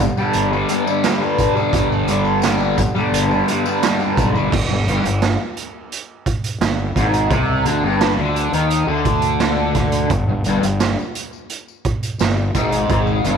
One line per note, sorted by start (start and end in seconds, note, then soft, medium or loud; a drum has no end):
0.00 muted distorted electric guitar stroke soft
0.00 tambourine medium
0.17 0.53 D3 medium
0.17 0.51 G3 medium
0.17 tambourine soft
0.33 0.63 G1 medium
0.33 closed hi-hat medium
0.33 tambourine soft
0.51 0.69 D3 medium
0.51 0.71 G3 medium
0.51 tambourine soft
0.68 1.04 G2 medium
0.68 0.88 D3 medium
0.68 0.86 G3 medium
0.68 closed hi-hat medium
0.68 tambourine soft
0.86 1.05 D3 medium
0.86 1.07 G3 medium
0.86 tambourine medium
1.04 1.73 G2 medium
1.04 1.23 D3 medium
1.04 snare loud
1.04 closed hi-hat medium
1.04 tambourine medium
1.08 1.21 G3 medium
1.21 1.58 D3 medium
1.21 1.54 G3 medium
1.21 tambourine soft
1.39 kick medium
1.39 closed hi-hat medium
1.39 tambourine medium
1.55 1.74 D3 medium
1.55 1.75 G3 medium
1.55 tambourine soft
1.73 2.86 G1 medium
1.73 2.07 G2 medium
1.73 2.08 D3 loud
1.73 kick loud
1.73 closed hi-hat medium
1.73 tambourine soft
1.77 2.10 G3 loud
1.92 tambourine soft
2.08 2.43 G2 medium
2.08 2.44 D3 medium
2.08 2.46 G3 medium
2.08 closed hi-hat medium
2.08 tambourine medium
2.25 tambourine soft
2.42 2.77 G2 medium
2.42 2.61 D3 medium
2.42 snare loud
2.42 closed hi-hat medium
2.42 tambourine medium
2.47 2.58 G3 medium
2.59 2.77 D3 medium
2.59 2.78 G3 medium
2.59 tambourine soft
2.78 muted distorted electric guitar stroke soft
2.78 kick medium
2.78 closed hi-hat medium
2.78 tambourine medium
2.95 3.32 D3 medium
2.95 3.29 G3 medium
2.95 tambourine soft
3.12 3.41 G1 medium
3.12 closed hi-hat loud
3.12 tambourine soft
3.30 3.49 D3 medium
3.30 3.50 G3 medium
3.30 tambourine soft
3.48 3.81 G2 medium
3.48 3.67 D3 medium
3.48 3.64 G3 medium
3.48 closed hi-hat medium
3.48 tambourine soft
3.65 3.83 D3 medium
3.65 3.84 G3 medium
3.65 tambourine medium
3.82 4.35 G2 medium
3.82 4.01 D3 medium
3.82 3.98 G3 medium
3.82 snare loud
3.82 closed hi-hat loud
3.82 tambourine loud
3.99 4.36 D3 medium
3.99 4.32 G3 medium
3.99 tambourine soft
4.17 4.33 B1 medium
4.17 kick medium
4.17 closed hi-hat medium
4.17 tambourine medium
4.33 4.50 G1 medium
4.33 4.51 D3 medium
4.33 4.50 G3 medium
4.33 tambourine soft
4.52 4.68 G1 medium
4.52 4.69 G2 medium
4.52 kick loud
4.52 crash loud
4.68 4.85 G1 medium
4.68 4.87 G2 medium
4.86 5.02 G1 medium
4.86 5.04 G2 medium
4.86 closed hi-hat medium
5.03 5.36 G1 medium
5.03 5.34 G2 medium
5.03 closed hi-hat medium
5.22 snare loud
5.22 closed hi-hat medium
5.57 closed hi-hat medium
5.92 closed hi-hat medium
6.26 kick medium
6.26 closed hi-hat medium
6.44 closed hi-hat medium
6.60 6.93 G1 medium
6.60 6.90 G2 medium
6.60 snare loud
6.60 closed hi-hat medium
6.95 7.28 G#1 medium
6.95 7.30 G#2 loud
6.95 kick medium
6.95 snare soft
6.95 closed hi-hat medium
7.13 closed hi-hat medium
7.30 7.63 C2 medium
7.30 7.64 C3 loud
7.30 kick loud
7.30 closed hi-hat medium
7.65 7.82 D2 medium
7.65 7.83 D3 medium
7.65 closed hi-hat medium
7.84 8.16 G1 medium
7.84 8.18 G2 medium
8.01 snare loud
8.01 closed hi-hat medium
8.17 8.50 D2 medium
8.17 8.52 D3 medium
8.36 closed hi-hat medium
8.53 8.85 D#2 medium
8.53 8.87 D#3 medium
8.53 closed hi-hat medium
8.70 closed hi-hat medium
8.87 10.06 D2 medium
8.87 10.09 D3 medium
9.05 kick medium
9.05 closed hi-hat medium
9.22 closed hi-hat medium
9.40 snare loud
9.40 closed hi-hat medium
9.75 kick medium
9.75 snare soft
9.75 closed hi-hat medium
9.92 closed hi-hat medium
10.10 10.26 G1 medium
10.10 10.28 G2 medium
10.10 kick loud
10.10 closed hi-hat medium
10.27 10.44 G1 medium
10.27 10.46 G2 medium
10.44 10.62 G1 medium
10.44 10.63 G2 medium
10.44 closed hi-hat medium
10.44 tambourine medium
10.63 10.95 G1 medium
10.63 10.92 G2 medium
10.63 closed hi-hat medium
10.63 tambourine soft
10.80 snare loud
10.80 closed hi-hat medium
10.80 tambourine medium
10.99 tambourine soft
11.15 closed hi-hat medium
11.15 tambourine medium
11.33 tambourine soft
11.49 closed hi-hat medium
11.49 tambourine soft
11.68 tambourine soft
11.85 kick medium
11.85 closed hi-hat medium
12.03 closed hi-hat medium
12.03 tambourine medium
12.19 12.53 G1 medium
12.19 12.48 G2 medium
12.19 snare loud
12.19 closed hi-hat medium
12.19 tambourine medium
12.37 tambourine soft
12.54 12.87 G#1 medium
12.54 12.89 G#2 loud
12.54 kick medium
12.54 closed hi-hat medium
12.54 tambourine medium
12.72 closed hi-hat medium
12.72 tambourine soft
12.90 13.22 G#1 medium
12.90 13.24 G#2 loud
12.90 kick loud
12.90 closed hi-hat medium
12.90 tambourine soft
13.07 tambourine soft
13.24 13.37 G1 medium
13.24 13.37 G2 medium
13.24 closed hi-hat medium
13.24 tambourine medium